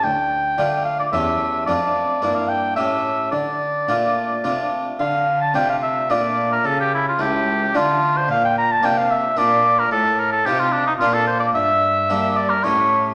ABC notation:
X:1
M:3/4
L:1/16
Q:1/4=110
K:Dm
V:1 name="Oboe"
g6 f d e4 | d4- d f g2 e4 | d8- d2 z2 | f3 a g f e2 d3 B |
A G E F G4 F3 c | f g b a g f e2 d3 B | A2 B A G F D _E F A c d | e6 d B ^c3 z |]
V:2 name="Harpsichord"
D,,4 [D,A,DF]4 [E,,A,^CG]4 | [F,,A,DF]4 [G,,B,DE]4 [A,,A,^CG]4 | D,4 [B,,A,DF]4 [C,A,DF]4 | D,4 [C,A,DF]4 [B,,A,DF]4 |
^C,4 [^C,,A,E]4 [D,A,DF]4 | B,,4 [C,B,DF]4 [B,,B,DF]4 | A,,4 [C,C_EF]4 [B,,B,DF]4 | G,,4 [G,B,DG]4 [A,,A,^CG]4 |]
V:3 name="Cello" clef=bass
D,,4 D,4 E,,4 | F,,4 G,,4 A,,4 | D,4 B,,4 C,4 | D,4 C,4 B,,4 |
^C,4 ^C,,4 D,4 | B,,4 C,4 B,,4 | A,,4 C,4 B,,4 | G,,4 G,4 A,,4 |]